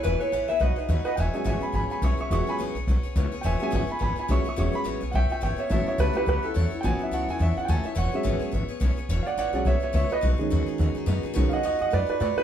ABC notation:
X:1
M:4/4
L:1/8
Q:"Swing" 1/4=212
K:E
V:1 name="Upright piano"
[Beg] [Beg] [Beg] [Beg] [Bdf] [Bdf] [Bdf] [Bdf] | [e=g^g] [eg] [eg] [gb] [gb] [gb] [ec'] [ec'] | [ec'] [gb] z6 | [e=g^g] [eg] [eg] [gb] [gb] [gb] [ec'] [ec'] |
[ec'] b z2 [ef=g] [eg] [eg] [ce] | [ce] [ce] [=GB] [GB] [GB] A2 z | [=g^g] e f g e f [=g^g] e | f e4 z3 |
z [=d=f^f] [df] [df] [ce] [ce] [ce] [B^d] | z8 | z [d=f^f] [df] [df] [B=d] [Bd] [Bd] B |]
V:2 name="Upright piano" clef=bass
z8 | z [F,G,C]6- [F,G,C] | [F,G,C]3 z4 z | z [F,G,C] z4 [F,G,C] z |
[F,G,C]3 z4 z | [F,B,C]8 | [F,B,C]8 | z [F,G,C]3 z4 |
z3 [F,G,C] z4 | z [D,G,C]6- [D,G,C] | [D,G,C] z6 z |]
V:3 name="Clean electric guitar"
B c2 e d3 z | z8 | z8 | z8 |
z8 | z8 | z8 | z8 |
z8 | z8 | z8 |]
V:4 name="Steel-string acoustic guitar"
[C,E,B,EGB] [B,EGB] [C,E,B,EGB] [B,EGB] [B,DFG] [DFG] [B,DFG] [DFG] | [C,E,B,CGc] [B,CGc] [C,E,B,CGc] [B,CGc] [B,CGc] [B,CGc] [C,E,B,CGc] [B,CGc] | [C,E,B,CGc] [B,CGc] [C,E,B,CGc] [B,CGc] [B,CGc] [B,CGc] [C,E,B,CGc] [B,CGc] | [C,E,B,CGc] [B,CGc] [C,E,B,CGc] [B,CGc] [B,CGc] [B,CGc] [C,E,B,CGc] [B,CGc] |
[C,E,B,CGc] [B,CGc] [C,E,B,CGc] [B,CGc] [B,CGc] [B,CGc] [C,E,B,CGc] [B,CGc] | [F,A,EAc] [EAc] [F,A,EAc] [EAc] [F,EAc] [EAc] [F,A,EAc] [EAc] | [F,A,EAc] [EAc] [F,A,EAc] [EAc] [F,EAc] [EAc] [F,A,EAc] [EAc] | [C,E,B,CGc] [B,CGc] [C,E,B,CGc] [B,CGc] [B,CGc] [B,CGc] [C,E,B,CGc] [B,CGc] |
[C,E,B,CGc] [B,CGc] [C,E,B,CGc] [B,CGc] [B,CGc] [B,CGc] [C,E,B,CGc] [B,CGc] | [B,DFG] [DFG] [B,DFG] [DFG] [B,DFG] [DFG] [B,DFG] [DFG] | [B,DFG] [DFG] [B,DFG] [DFG] [B,DFG] [DFG] [B,DFG] [DFG] |]
V:5 name="Upright bass" clef=bass
E,,, z A,,, B,,, B,,, z D,, z | E,,, z G,,, z G,,, z B,,, z | E,,, z A,,, B,,, B,,, z C,, z | E,,, z G,,, z G,,, z B,,, z |
E,,, z A,,, B,,, B,,, z G,,, z | A,,, z C,, z C,, z E,, z | A,,, z C,, E,, E,, z D,, z | E,,, z G,,, z G,,, z B,,, z |
E,,, z A,,, B,,, B,,, z C,, z | B,,, z D,, z D,, z F,, z | B,,, z E,, F,, F,, z A,, z |]